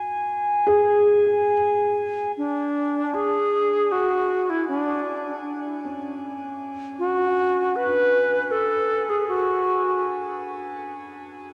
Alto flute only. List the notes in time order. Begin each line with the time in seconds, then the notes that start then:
2.37 D4
3.14 G#4
3.92 F#4
4.50 E4
4.68 D4
6.99 F#4
7.76 B4
8.51 A4
9.10 G#4
9.29 F#4